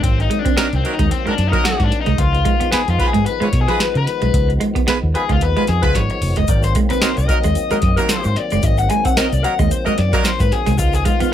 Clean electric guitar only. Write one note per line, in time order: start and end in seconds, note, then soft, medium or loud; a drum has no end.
0.18 muted clean electric guitar stroke soft
0.30 0.39 G#3 medium
0.45 0.52 C4 medium
0.57 0.66 C4 medium
0.84 muted clean electric guitar stroke soft
0.99 1.06 G#3 medium
1.26 1.33 G#3 medium
1.37 muted clean electric guitar stroke soft
1.52 1.60 F#3 medium
1.64 1.73 F#3 medium
1.80 muted clean electric guitar stroke soft
2.06 2.14 G#3 medium
2.33 muted clean electric guitar stroke soft
2.45 2.54 G#3 medium
2.60 2.67 B3 medium
2.72 2.81 B3 medium
2.99 muted clean electric guitar stroke soft
3.13 3.21 G#3 medium
3.40 3.48 G#3 medium
3.53 muted clean electric guitar stroke soft
3.68 3.75 F3 medium
3.79 3.89 F3 medium
3.94 muted clean electric guitar stroke soft
4.22 4.29 G#3 medium
4.49 muted clean electric guitar stroke soft
4.60 4.70 G#3 medium
4.75 4.83 B3 medium
4.87 4.96 B3 medium
5.14 muted clean electric guitar stroke soft
5.29 5.36 G#3 medium
5.57 5.64 G#3 medium
5.68 muted clean electric guitar stroke soft
5.83 5.90 F3 medium
5.95 6.04 F3 medium
6.10 muted clean electric guitar stroke soft
6.37 6.44 G#3 medium
6.64 muted clean electric guitar stroke soft
6.76 6.85 G#3 medium
6.91 6.98 C4 medium
7.03 7.12 C4 medium
7.29 muted clean electric guitar stroke soft
7.44 7.52 G#3 medium
7.71 7.78 G#3 medium
7.83 muted clean electric guitar stroke soft
7.98 8.05 F#3 medium
8.10 8.19 F#3 medium
8.25 muted clean electric guitar stroke soft
8.52 8.59 G#3 medium
8.79 muted clean electric guitar stroke soft
8.91 9.00 G#3 medium
9.05 9.13 C4 medium
9.18 9.27 C4 medium
9.44 muted clean electric guitar stroke soft
9.59 9.66 G#3 medium
9.86 9.93 G#3 medium
9.98 muted clean electric guitar stroke soft
10.13 10.20 F#3 medium
10.25 10.34 F#3 medium
10.40 muted clean electric guitar stroke soft
10.66 10.74 G#3 medium
10.94 muted clean electric guitar stroke soft
11.05 11.14 G#3 medium
11.20 11.28 B3 medium